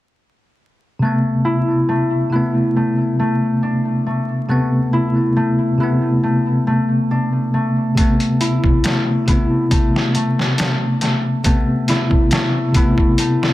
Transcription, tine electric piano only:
0.99 2.26 C3 medium
0.99 2.28 A3 medium
1.05 2.29 B3 medium
2.30 4.44 C3 medium
2.30 4.45 A3 medium
2.36 4.47 B3 medium
4.49 4.73 C3 medium
4.49 4.74 A3 medium
4.49 4.75 B3 medium
5.78 7.91 C3 medium
5.78 7.93 A3 medium
5.83 7.94 B3 medium
7.95 9.22 C3 medium
7.95 9.23 A3 medium
8.01 9.25 B3 medium
9.25 11.39 C3 medium
9.25 11.40 A3 medium
9.31 11.42 B3 medium
11.44 11.69 C3 medium
11.44 11.69 A3 medium
11.44 11.70 B3 medium
12.73 13.53 C3 medium
12.73 13.53 A3 medium
12.78 13.53 B3 medium

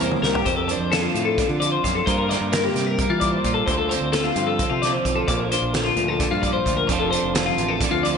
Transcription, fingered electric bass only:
0.00 0.16 E2 medium
0.22 0.41 C2 medium
0.46 0.73 F2 loud
0.80 1.07 F2 medium
1.14 1.42 A2 medium
1.49 1.76 D3 medium
1.84 2.02 F#2 medium
2.07 2.34 G2 medium
2.41 2.68 G2 medium
2.74 3.02 C3 medium
3.10 3.37 E3 medium
3.44 3.62 A#2 medium
3.67 3.94 D2 loud
4.01 4.28 D2 medium
4.36 4.63 G2 medium
4.71 4.98 C3 medium
5.05 5.23 B1 loud
5.28 5.55 A#1 loud
5.62 5.89 A#1 medium
5.96 6.23 D2 medium
6.32 6.58 G2 medium
6.66 6.84 D2 medium
6.89 7.15 F1 medium
7.23 7.50 F1 medium
7.58 7.84 A1 medium
7.91 8.18 D2 medium

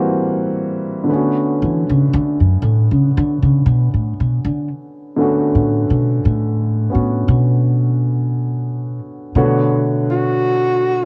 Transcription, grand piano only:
0.00 1.09 E3 medium
0.00 1.09 G3 soft
0.00 1.09 A#3 soft
0.00 1.10 C4 soft
0.00 1.10 F#4 medium
1.04 5.15 D3 soft
1.04 5.17 A3 soft
1.09 5.17 B3 soft
1.09 5.19 C#4 soft
1.15 5.20 F#4 soft
5.16 9.34 D3 soft
5.16 9.34 A3 soft
5.16 6.89 B3 soft
5.21 6.90 C#4 soft
5.21 6.91 F#4 soft
6.90 9.34 B3 soft
6.90 9.35 C#4 soft
6.90 9.35 F#4 soft
9.36 11.05 D3 medium
9.36 11.05 A3 soft
9.36 11.05 B3 soft
9.36 11.05 F#4 medium
9.36 11.05 C#5 soft

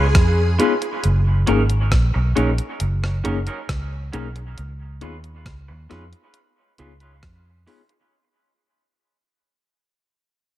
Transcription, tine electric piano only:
0.59 0.72 B3 medium
0.59 0.72 D#4 medium
0.59 0.73 F4 medium
0.59 0.73 G#4 medium
0.82 0.90 F4 soft
0.82 0.91 G#4 soft
1.48 1.61 A#3 medium
1.48 1.61 C#4 medium
1.48 1.61 D#4 medium
1.48 1.61 G#4 loud
2.36 2.49 A#3 medium
2.36 2.49 C#4 medium
2.36 2.49 D#4 medium
2.36 2.49 G#4 loud
3.24 3.38 A#3 medium
3.24 3.38 C#4 medium
3.24 3.38 D#4 medium
3.24 3.38 G#4 loud
4.13 4.26 A#3 medium
4.13 4.26 C#4 medium
4.13 4.26 D#4 medium
4.13 4.27 G#4 medium
4.35 4.44 D#4 soft
4.35 4.44 G#4 soft
5.01 5.15 B3 medium
5.01 5.15 D#4 medium
5.01 5.15 F4 medium
5.01 5.15 G#4 loud
5.90 6.03 B3 medium
5.90 6.03 D#4 medium
5.90 6.03 F4 medium
5.90 6.03 G#4 medium
6.79 6.92 B3 medium
6.79 6.92 D#4 medium
6.79 6.92 F4 medium
6.79 6.92 G#4 loud
7.67 7.80 B3 medium
7.67 7.80 D#4 medium
7.67 7.80 F4 medium
7.67 7.81 G#4 medium
7.90 7.98 F4 soft
7.90 7.98 G#4 soft

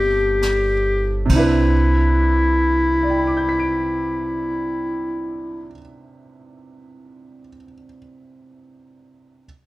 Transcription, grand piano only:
0.00 1.27 G3 medium
0.00 1.30 C4 soft
0.00 1.32 D4 soft
0.00 1.31 E4 soft
0.00 1.31 A4 soft
0.00 1.32 B4 medium
1.26 5.66 C3 medium
1.30 5.70 C4 medium
1.30 5.73 D4 medium
1.35 5.76 E4 medium
1.35 5.79 B4 medium
3.03 7.39 D5 soft
3.10 7.46 G5 soft
3.18 7.55 B5 soft
3.27 7.64 D6 soft
3.37 7.73 G6 soft
3.49 7.85 B6 soft
3.59 7.96 D7 soft

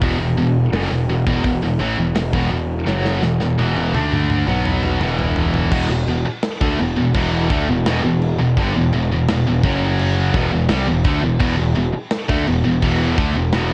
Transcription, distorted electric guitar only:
0.02 0.18 E2 medium
0.02 0.19 B2 loud
0.19 0.36 E2 medium
0.19 0.37 B2 medium
0.38 0.66 E2 medium
0.38 0.66 B2 medium
0.73 0.90 F#2 medium
0.73 0.90 C#3 medium
0.91 1.08 E2 medium
0.91 1.09 B2 medium
1.09 1.25 E2 medium
1.09 1.26 B2 medium
1.27 1.43 E2 medium
1.27 1.44 B2 loud
1.44 1.62 E2 medium
1.44 1.62 B2 medium
1.63 1.81 E2 medium
1.63 1.79 B2 medium
1.80 1.97 A2 medium
1.80 1.97 E3 medium
1.98 2.14 E2 medium
1.98 2.15 B2 medium
2.16 2.33 E2 medium
2.16 2.33 B2 medium
2.34 2.50 E2 medium
2.34 2.51 B2 medium
2.51 2.80 E2 medium
2.51 2.80 B2 medium
2.86 3.21 F#2 medium
2.86 3.22 C#3 loud
2.86 3.22 F#3 medium
3.22 3.39 E2 medium
3.22 3.39 B2 medium
3.40 3.57 E2 medium
3.40 3.57 B2 medium
3.58 3.93 E2 medium
3.58 3.93 B2 loud
3.58 3.94 E3 medium
3.94 4.46 D3 medium
3.94 4.47 A3 loud
3.94 4.47 D4 loud
4.47 5.00 B2 medium
4.47 5.00 F#3 medium
4.47 5.01 B3 medium
5.01 5.71 E2 medium
5.01 5.72 B2 medium
5.01 5.72 E3 medium
5.72 5.89 E2 loud
5.72 5.89 B2 medium
5.91 6.07 E2 medium
5.91 6.07 B2 medium
6.08 6.24 E2 medium
6.08 6.26 B2 medium
6.25 muted distorted electric guitar stroke medium
6.61 6.78 D3 medium
6.61 6.78 A3 loud
6.79 6.95 E2 medium
6.79 6.96 B2 medium
6.96 7.14 E2 medium
6.96 7.14 B2 medium
7.15 7.49 E2 loud
7.15 7.49 B2 loud
7.15 7.50 E3 loud
7.50 7.67 D3 medium
7.50 7.67 A3 loud
7.68 7.85 E2 medium
7.68 7.85 B2 medium
7.86 8.03 E2 medium
7.86 8.03 B2 loud
8.04 8.32 E2 medium
8.04 8.32 B2 medium
8.39 8.57 E2 medium
8.39 8.57 B2 medium
8.57 8.73 G2 medium
8.57 8.74 D3 loud
8.76 8.92 E2 medium
8.76 8.92 B2 medium
8.93 9.10 E2 medium
8.93 9.10 B2 medium
9.12 9.28 E2 medium
9.12 9.29 B2 medium
9.29 9.46 E2 medium
9.29 9.46 B2 medium
9.47 9.64 E2 medium
9.47 9.64 B2 medium
9.65 10.34 F#2 medium
9.65 10.34 C#3 medium
9.65 10.34 F#3 loud
10.35 10.51 E2 medium
10.35 10.51 B2 loud
10.52 10.70 E2 medium
10.52 10.68 B2 medium
10.69 10.86 C3 medium
10.69 10.86 G3 loud
10.87 11.05 E2 medium
10.87 11.04 B2 medium
11.05 11.21 D3 loud
11.05 11.22 A3 loud
11.22 11.38 E2 medium
11.22 11.39 B2 medium
11.39 11.56 E2 loud
11.39 11.56 B2 loud
11.57 11.74 E2 medium
11.57 11.75 B2 medium
11.76 11.92 E2 medium
11.76 11.94 B2 medium
11.93 muted distorted electric guitar stroke medium
12.29 12.45 D3 loud
12.29 12.46 A3 loud
12.46 12.63 E2 medium
12.46 12.63 B2 medium
12.64 12.81 E2 medium
12.64 12.82 B2 medium
12.82 13.17 E2 medium
12.82 13.17 B2 loud
12.82 13.17 E3 loud
13.17 13.34 D3 medium
13.17 13.34 A3 loud
13.35 13.52 E2 medium
13.35 13.52 B2 medium
13.53 13.70 E2 loud
13.53 13.70 B2 loud

